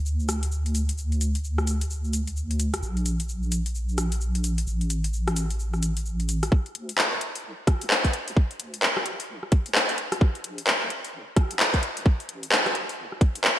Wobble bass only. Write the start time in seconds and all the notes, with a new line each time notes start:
Already playing: D2
2.83 A#1
4.67 A1
6.75 D2
7.12 D2
7.44 C2
7.81 D2
8.27 D2
8.60 D2
8.97 D2
9.29 C2
9.66 D2
10.12 D2
10.44 A#1
10.82 A#1
11.14 G1
11.51 A#1
11.97 A#1
12.29 A1
12.66 A1
12.98 G1
13.35 A1